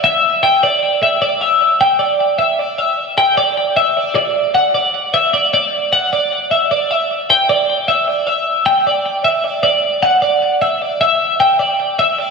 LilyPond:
\new Staff \with { instrumentName = "Clean electric guitar" } { \time 7/8 \key d \mixolydian \tempo 4 = 153 e''4 g''8 d''4 e''8 d''8 | e''4 g''8 d''4 e''8 d''8 | e''4 g''8 d''4 e''8 d''8 | d''4 fis''8 d''4 e''8 d''8 |
d''4 fis''8 d''4 e''8 d''8 | e''4 g''8 d''4 e''8 d''8 | e''4 g''8 d''4 e''8 d''8 | d''4 fis''8 d''4 e''8 d''8 |
e''4 g''8 d''4 e''8 d''8 | }